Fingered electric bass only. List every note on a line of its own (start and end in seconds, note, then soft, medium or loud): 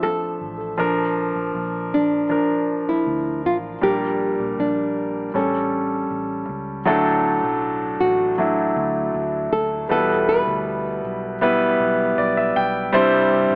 0.03 0.43 F2 medium
0.41 0.77 A1 medium
0.79 1.32 A#1 medium
1.36 1.54 A#1 medium
1.55 3.03 A#1 medium
3.07 3.42 D2 medium
3.45 3.80 A1 medium
3.83 4.36 A#1 medium
4.40 4.57 A#1 medium
4.58 5.31 A#1 loud
5.35 6.07 A1 loud
6.11 6.46 A1 medium
6.49 6.84 C#2 medium
6.87 7.40 D2 loud
7.43 7.96 B1 medium
8.00 8.73 A1 medium
8.76 9.12 D2 loud
9.14 9.50 D2 medium
9.52 9.88 D2 medium
9.91 10.44 E2 loud
10.47 11.00 D2 medium
11.04 11.76 B1 medium
11.80 12.16 B1 medium
12.18 12.54 B1 medium
12.56 12.92 B1 medium
12.94 13.47 C2 loud
13.51 13.55 A1 medium